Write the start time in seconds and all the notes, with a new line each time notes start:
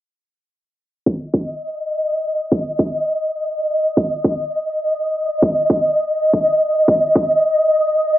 1.06 D#5, kick
1.34 kick
2.52 kick
2.79 kick
3.97 kick
4.25 kick
5.42 kick
5.70 kick
6.33 kick
6.88 kick
7.15 kick